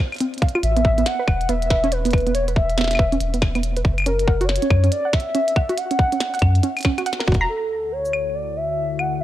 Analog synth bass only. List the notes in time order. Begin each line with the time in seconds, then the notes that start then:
0.63 A1
1.28 E1
1.49 E1
2.99 E1
3.21 E1
3.85 F#1
4.70 F#2
6.42 F#2
7.28 E1